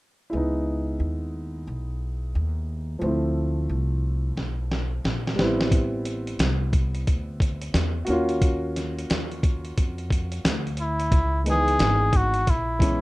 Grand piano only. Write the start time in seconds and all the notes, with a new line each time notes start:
0.30 G#3 E4
0.35 B3 D#4
2.99 F3 A3
3.04 C4 E4
5.35 G3 B3
5.40 C4 E4
8.05 A#3 F#4
8.10 C#4 F4
11.44 D#3 G#3 B3 D#4
11.51 E3
12.79 E3 G#3 B3 C#4